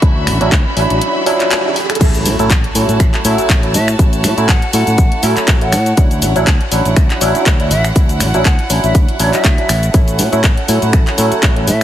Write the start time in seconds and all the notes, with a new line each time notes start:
Already playing: F#4 E5, riser
0.02 D2 F#3 C#4 D4 E4 B5, kick, closed hi-hat
0.27 A1, finger snap, open hi-hat
0.40 A1 F#3 C#4 D4 E4, closed hi-hat
0.52 kick, clap, closed hi-hat
0.76 A1 F#3 C#4 D4 E4, open hi-hat
0.90 A1, closed hi-hat
1.01 closed hi-hat
1.26 F#3 C#4 D4 E4, open hi-hat
1.40 clap, closed hi-hat
1.51 clap, closed hi-hat
1.64 F#3 C#4 D4 E4
1.76 open hi-hat
1.90 finger snap, closed hi-hat
1.95 closed hi-hat
2.00 A1 F#3 A3 C#4 E4 F#4 C#5 A5, kick, closed hi-hat, crash, impact, shaker
2.14 closed hi-hat, shaker
2.26 A2, open hi-hat, shaker
2.39 A2 F#3 A3 C#4 E4, closed hi-hat, shaker
2.50 A1, kick, clap, closed hi-hat, shaker
2.64 closed hi-hat
2.75 A2 F#3 A3 C#4 E4, open hi-hat, shaker
2.89 A2, closed hi-hat, shaker
3.00 A1, finger snap, kick, closed hi-hat, shaker
3.14 clap, closed hi-hat
3.24 A2 F#3 A3 C#4 E4, open hi-hat, shaker
3.38 muted fingered electric bass stroke, closed hi-hat, shaker
3.49 A1, kick, clap, closed hi-hat, shaker
3.63 F#3 A3 C#4 E4, closed hi-hat
3.74 A2 E5, open hi-hat, shaker
3.88 finger snap, closed hi-hat, shaker
3.99 A1 F#3 A3 C#4 E4, kick, closed hi-hat, shaker
4.13 closed hi-hat, shaker
4.24 A2, finger snap, open hi-hat, shaker
4.37 A2 F#3 A3 C#4 E4, closed hi-hat, shaker
4.49 A1 F#5, kick, clap, closed hi-hat, shaker
4.62 closed hi-hat
4.73 A2 F#3 A3 C#4 E4 F#5, open hi-hat, shaker
4.87 A2, closed hi-hat, shaker
4.98 A1, kick, closed hi-hat, shaker
5.12 muted fingered electric bass stroke, closed hi-hat
5.23 A2 F#3 A3 C#4 E4, open hi-hat, shaker
5.37 muted fingered electric bass stroke, clap, closed hi-hat, shaker
5.48 A1, kick, clap, closed hi-hat, shaker
5.61 F#3 A3 C#4 E4 F#5, closed hi-hat
5.72 A2, finger snap, open hi-hat, shaker
5.86 closed hi-hat, shaker
5.97 D2 F#3 C#4 D4 E4 F#5, kick, closed hi-hat, shaker
6.11 closed hi-hat, shaker
6.22 A1, open hi-hat, shaker
6.35 A1 F#3 C#4 D4 E4, closed hi-hat, shaker
6.47 D2, kick, clap, closed hi-hat, shaker
6.61 closed hi-hat
6.71 A1 F#3 C#4 D4 E4, open hi-hat, shaker
6.85 A1, closed hi-hat, shaker
6.96 D2, finger snap, kick, closed hi-hat, shaker
7.10 clap, closed hi-hat
7.21 A1 F#3 C#4 D4 E4, open hi-hat, shaker
7.35 muted fingered electric bass stroke, closed hi-hat, shaker
7.46 D2, kick, clap, closed hi-hat, shaker
7.59 F#3 C#4 D4 E4, closed hi-hat
7.71 A1 E5, open hi-hat, shaker
7.85 finger snap, closed hi-hat, shaker
7.95 D2 F#3 C#4 D4 E4, kick, closed hi-hat, shaker
8.09 closed hi-hat, shaker
8.20 A1, finger snap, open hi-hat, shaker
8.34 A1 F#3 C#4 D4 E4, closed hi-hat, shaker
8.45 D2 F#5, kick, clap, closed hi-hat, shaker
8.59 closed hi-hat
8.70 A1 F#3 C#4 D4 E4, open hi-hat, shaker
8.84 A1 E5, closed hi-hat, shaker
8.95 kick, closed hi-hat, shaker
9.09 closed hi-hat
9.19 A1 F#3 C#4 D4 E4 C#5, open hi-hat, shaker
9.33 E5, clap, closed hi-hat, shaker
9.44 D2, kick, clap, closed hi-hat, shaker
9.58 F#3 C#4 D4 E4, closed hi-hat
9.69 A1, finger snap, open hi-hat, shaker
9.83 closed hi-hat, shaker
9.94 A1 F#3 A3 C#4 E4 A4 F#5, kick, closed hi-hat, shaker
10.08 closed hi-hat, shaker
10.19 A2, open hi-hat, shaker
10.32 A2 F#3 A3 C#4 E4, closed hi-hat, shaker
10.44 A1, kick, clap, closed hi-hat, shaker
10.57 closed hi-hat
10.68 A2 F#3 A3 C#4 E4, open hi-hat, shaker
10.82 A2, closed hi-hat, shaker
10.93 A1, finger snap, kick, closed hi-hat, shaker
11.07 clap, closed hi-hat
11.18 A2 F#3 A3 C#4 E4, open hi-hat, shaker
11.32 muted fingered electric bass stroke, closed hi-hat, shaker
11.43 A1, kick, clap, closed hi-hat, shaker
11.56 F#3 A3 C#4 E4, closed hi-hat
11.67 A2 E5, open hi-hat, shaker